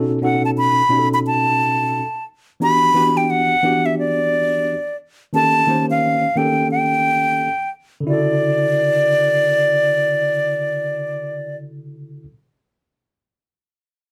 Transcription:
Already playing: B2 C#4 D#4 F#4 A4
0.21 B2 C#4 D#4 F#4 A4 F#5
0.45 A5
0.58 B5
0.89 B2 C#4 D#4 F#4 G4
0.99 A4
1.14 B5
1.27 A5
2.60 E3 B3 D4 F#4 G4 B5
2.94 E3 B3 D4 F#4 G4
3.17 G5
3.30 F#5
3.63 E3 B3 D4 F#4 G4
3.86 E5
3.99 D5
5.33 D#3 A#3 C#4 G4 A4 A5
5.67 D#3 A#3 C#4 G4 C5
5.91 F5
6.36 D#3 A#3 C#4 G4 A4 G5
6.71 G5
8.00 C#3 D3
8.07 E4 F#4 D5
8.13 A4

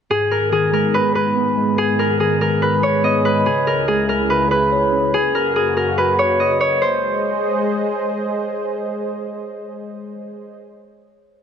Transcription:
0.10 G#2 D#3 B3 G#4
0.31 A#4
0.52 D#3 G#4
0.73 G#3 A#4
0.94 G#2 B4
1.15 G#2 B4
1.36 B3
1.57 G#3
1.78 G#2 G#4
1.99 A#4
2.20 D#3 G#4
2.41 G#3 A#4
2.62 G#2 B4
2.83 G#2 C#5
3.03 B3 D#5
3.25 G#3 B4
3.46 C#2 C#3 E4 G#4
3.67 A#4
3.88 G#3 G#4
4.09 C#4 A#4
4.30 C#3 B4
4.50 C#3 B4
4.72 C#5
4.93 C#4
5.14 F#2 A#3 F#4 G#4
5.35 A#4
5.56 G#4
5.77 A#4
5.98 B4
6.19 C#5
6.40 D#5
6.61 C#5
6.82 G#3 G#4 C5 D#5

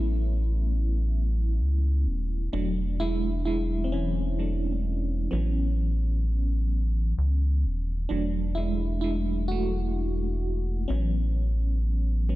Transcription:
Already playing: A1 F#3 A3 B3 C#4 E4
1.60 C#2
2.07 D#1
2.53 E1 F#3 A3 D4
3.00 G#3 E4
3.45 G#3 E4
3.84 C4
3.92 E3 C#4
4.39 F#3 A3 D4
5.31 A1 E3 F#3 B3 C#4
7.18 C#2
7.65 D#1
8.09 E1 F#3 A3 D4
8.55 G#3 E4
9.01 G#3 E4
9.48 A3 F#4
10.88 A1 E3 F#3 B3 C#4
12.29 F#3 B3 C#4

